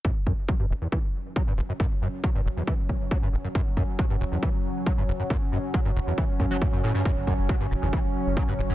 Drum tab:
BD |ooo-o-o-|o-o-ooo-|ooo-o-o-|o-o-ooo-|

BD |ooo-o-o-|